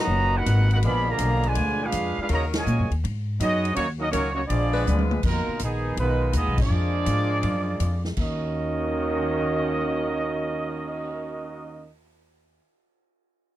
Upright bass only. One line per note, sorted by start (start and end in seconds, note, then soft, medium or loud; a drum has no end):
0.07 0.44 F#1 medium
0.46 0.82 G#1 loud
0.83 1.19 A#1 medium
1.19 1.55 B1 medium
1.56 1.92 D2 medium
1.93 2.16 F2 loud
2.18 muted upright bass stroke soft
2.29 2.65 D#2 medium
2.66 2.81 A#2 loud
2.79 2.90 F#2 medium
2.90 3.02 D#2 medium
3.04 3.39 G#2 loud
3.40 3.76 F#2 loud
3.77 4.12 D#2 medium
4.13 4.49 C#2 medium
4.50 4.86 A#1 medium
4.87 5.23 D2 medium
5.23 5.46 F2 medium
5.48 muted upright bass stroke soft
5.60 5.96 A#1 medium
5.97 6.33 B1 medium
6.34 6.48 D#2 medium
6.46 6.57 B1 medium
6.58 6.69 G#1 medium
6.70 7.06 F2 medium
7.06 7.43 G#2 medium
7.43 7.79 F#2 medium
7.80 8.16 F2 loud
8.17 12.58 D#2 medium